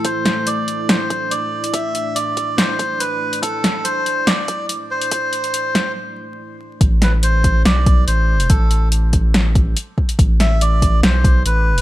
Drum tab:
HH |x-x-x-x-x-x-x--x|x-x-x-x-x-x-x--x|x-x-x-x-x-x-x--x|x-xxx-x---------|
SD |--o-----o-------|--------o-------|--o-----o-------|------o---------|
BD |o---------o-----|o-----o---o-----|o---------o-----|o-----o---------|

HH |x-x-x-x-x-x-x--x|x-x-x-x-x-x-x--x|x-x-x-x-x-x-x--x|
SD |--o-----o-------|--------o-------|--o-----o-------|
BD |o-----o---o-----|o-----o---o---o-|o-----o---o-----|